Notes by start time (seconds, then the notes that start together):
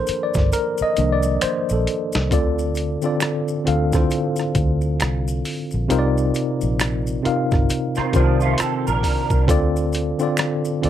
Already playing: D#3 F3 A#3 D4 A4 A#4 C5
0.07 muted fingered electric bass stroke, closed hi-hat, maracas
0.23 D5
0.34 G1, kick, snare, maracas
0.52 A#4, closed hi-hat, maracas
0.78 muted fingered electric bass stroke, maracas
0.82 D#5
0.96 C2 D#3 F3 A#3 D4, closed hi-hat, maracas
1.13 D5
1.23 maracas
1.41 C5, finger snap, muted fingered electric bass stroke, closed hi-hat, maracas
1.69 A#1 A4, maracas
1.87 closed hi-hat
2.13 C2, snare, maracas
2.30 D2 D3 C4 F4 A4 D5, kick, closed hi-hat, maracas
2.59 maracas
2.75 closed hi-hat, maracas
3.02 D3 C4 F4 A4, maracas
3.06 D5
3.20 finger snap, cross-stick, closed hi-hat, maracas
3.48 maracas
3.64 D2 D3 C4 F4 A4 F5, closed hi-hat
3.91 D3 C4 E4 A4 C5, kick, cross-stick, maracas
4.00 F4
4.11 closed hi-hat, maracas
4.36 cross-stick, maracas
4.55 D2, kick, closed hi-hat, maracas
4.81 maracas
5.00 C2, finger snap, cross-stick, closed hi-hat, maracas
5.28 maracas
5.45 open hi-hat, maracas
5.71 A#1, maracas
5.88 C2 C3 C4 D#4 F4 A#4 C5, closed hi-hat, maracas
5.99 D5
6.18 maracas
6.34 closed hi-hat, maracas
6.61 A#1, maracas
6.80 finger snap, cross-stick, closed hi-hat, maracas
7.07 maracas
7.23 C3 C4 D#4 F4 A#4 F5, muted fingered electric bass stroke, closed hi-hat
7.51 G1, kick, cross-stick, maracas
7.69 closed hi-hat, maracas
7.95 D#3 C4, muted fingered electric bass stroke, cross-stick, maracas
8.13 C2 C3 D#3 F3 C4 D4 F4 A#4 C5, kick, closed hi-hat, maracas
8.40 A3 F4, maracas
8.58 C4 A4, finger snap, muted fingered electric bass stroke, cross-stick, closed hi-hat, maracas
8.87 A#1 D4 A#4, maracas
9.03 kick, open hi-hat, maracas
9.30 C2, kick, maracas
9.47 D2 D3 C4 F4 A4, kick, closed hi-hat, maracas
9.51 D5
9.76 maracas
9.93 closed hi-hat, maracas
10.19 D3 C4 F4 A4, maracas
10.23 D5
10.37 finger snap, cross-stick, closed hi-hat, maracas
10.65 maracas
10.82 D2 D3 C4 F4 A4 D5, closed hi-hat